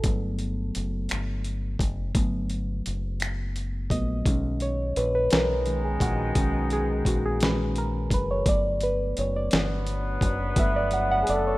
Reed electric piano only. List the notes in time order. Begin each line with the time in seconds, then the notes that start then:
Already playing: A4
0.04 F#3 A3 B3
2.15 F#3 A3 B3
3.91 F#3 A3 B3 D#5
4.27 D#3 G#3 C#4
4.62 C#5
4.97 B4
5.15 B4
5.32 A#4
5.66 D#3 G#3 C#4
5.85 G#4
6.02 F#4
6.36 D#3 G#3 C#4
6.73 G#4
7.08 F#4
7.26 G#4
7.42 D#3 G#3 C#4 B4
7.78 A#4
8.14 B4
8.31 C#5
8.48 F#3 A3 B3 D5
8.83 B4
9.19 C#5
9.36 D5
10.58 F#3 A3 B3 E5
10.76 D5
10.94 F#5
11.12 F#5
11.30 D5
11.47 C#5